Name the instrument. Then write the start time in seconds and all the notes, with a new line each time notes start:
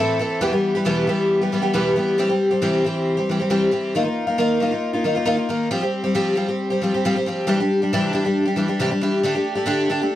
twelve-string acoustic guitar
0.00 A2 E3 C4 E4 A4
0.19 E3 C4 E4 A4
0.41 E2 B2 E3 G3 B3 G4
0.52 E3 G3 B3 G4
0.75 E3 G3 B3 G4
0.85 E2 B2 E3 G3 B3 G4
1.07 E3 G3 B3 G4
1.41 E3 G3 B3 G4
1.52 E3 G3 B3 G4
1.62 E3 G3 B3 G4
1.73 E2 B2 E3 G3 B3 G4
1.96 E3 G3 B3 G4
2.18 C3 E3 G3 C4 G4
2.29 G3 C4 G4
2.51 G3 C4 G4
2.62 C3 E3 G3 C4 G4
2.84 E3 G3 C4 G4
3.17 G3 C4 G4
3.29 E3 G3 C4 G4
3.39 G3 C4 G4
3.50 C3 E3 G3 C4 G4
3.71 E3 G3 C4 G4
3.95 D#3 A#3 D#4 F4
4.03 A#3 D#4 F4
4.27 A#3 D#4 F4
4.38 D#3 A#3 D#4 F4
4.60 D#3 A#3 D#4 F4
4.71 A#3 D#4 F4
4.93 A#3 D#4 F4
5.04 D#3 A#3 D#4 F4
5.15 A#3 D#4 F4
5.25 D#3 A#3 D#4 F4
5.37 A#3 D#4 F4
5.49 D#3 A#3 D#4 F4
5.71 F3 G3 C4 G4
5.81 G3 C4 G4
6.04 G3 C4 G4
6.15 F3 G3 C4 G4
6.35 F3 G3 C4 G4
6.48 G3 C4 G4
6.70 G3 C4 G4
6.81 F3 G3 C4 G4
6.94 G3 C4 G4
7.05 F3 G3 C4 G4
7.16 G3 C4 G4
7.26 F3 G3 C4 G4
7.47 C3 E3 G3 D4 G4
7.60 G3 D4 G4
7.82 G3 D4 G4
7.93 C3 E3 G3 D4 G4
8.13 E3 G3 D4 G4
8.24 G3 D4 G4
8.45 G3 D4 G4
8.56 E3 G3 D4 G4
8.68 G3 D4 G4
8.79 C3 E3 G3 D4 G4
8.91 G3 D4 G4
9.01 E3 G3 D4 G4
9.23 D3 A3 D4 G4
9.35 A3 D4 G4
9.55 A3 D4 G4
9.66 D3 A3 D4 G4
9.89 D3 A3 D4 G4
10.02 A3 D4 G4